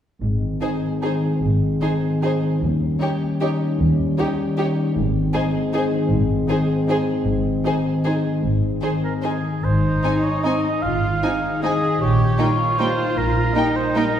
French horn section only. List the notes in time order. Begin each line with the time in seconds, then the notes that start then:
0.21 G#3 C4
2.61 G3 C#4
4.95 G#3 C4
10.04 G#3 D#4
10.47 G#3 D#4
11.23 G#3 D#4
11.63 G#3 D#4
12.40 G3 D#4
12.79 G3 D#4
13.54 G3 D#4
13.96 G3 D#4